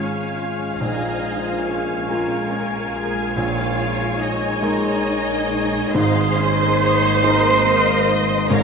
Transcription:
Already playing: G#1 G#2 G#3 C#4 F4 G#4 C#5 F5 G#5
0.37 F4
0.59 G#3
0.78 A#1 A#2 D#4 C5 D#5 G#5
1.02 G#3
1.23 F4
1.45 A#4
1.64 C#4 G#4 C#5
1.87 F5
2.08 G#3 F4 A#4 A#5
2.30 F5
2.51 G#4
2.72 A#4
2.93 F4 G#4 G#5
3.15 G#3
3.35 A#1 A#2 G#3 D#4 F4 C#5 F5
3.58 G#3
3.79 D#4
4.00 A#4
4.20 D#4 G#4 D#5
4.42 D#5
4.62 G#3 D#4 A#4 D#5 A#5
4.85 D#5
5.29 A#4
5.51 D#4
5.73 G#3
5.95 G#1 G#2 A#3 G#4 C5 D#5 F5 C6
6.17 G#3
6.39 C#4 D#4 D#5
6.60 A#4
6.81 C#5 D#5
7.02 D#5
7.23 G#3 D#4 A#4 D#5 A#5
7.44 D#5
7.67 A#4
7.87 A#4
8.08 D#4 D#5
8.29 G#3
8.50 G#1 G#2 F3 C#4 A#4 C#5 F5 A#5

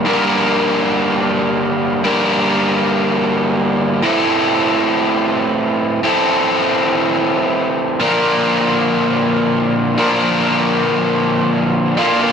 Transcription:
0.05 G2 D3 G3 A#3 D4 A#4
2.04 G2 D3 G3 A#3 D4 A#4
4.02 A2 E3 C4 E4 A4
6.03 A2 E3 C4 E4 A4
8.00 A#2 D3 F3 A#3 D4 A#4
9.98 A#2 D3 F3 A#3 D4 A#4
11.97 A#2 D3 A#3 D4 F4
12.22 A#3 D4 F4

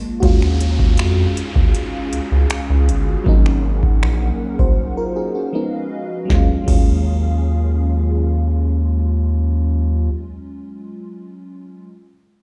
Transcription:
Already playing: G#3 A#3 C4 D4 F4
0.20 D#2 G#3 C#4 D#4 F#4 G#4 F5, kick, closed hi-hat, downlifter
0.25 F4
0.42 finger snap
0.60 closed hi-hat
0.79 kick
0.97 F2, finger snap, closed hi-hat
1.37 closed hi-hat
1.56 D#2, kick
1.75 closed hi-hat
2.13 C#2, closed hi-hat
2.32 C#2
2.50 finger snap, closed hi-hat
2.70 C#2
2.89 G1, closed hi-hat
3.24 G#1 F#3 A#3 C#4 A#4 F#5, kick
3.29 D#4
3.46 finger snap
3.83 kick
4.03 A#1, finger snap
4.59 C2 F#4 C5, kick
4.97 F4 A#4
5.16 D#4 G#4
5.35 C#4 F#4
5.53 F3 G#3 B3 C#4 D#4 B4 D#5 F5
6.25 F#3 G#3
6.30 D#2 D#3 F#3 C#4 G#4 F5, kick, snare
6.35 F4
6.63 F#3 G#3
6.68 D#2 C#4, kick, crash
6.72 F4

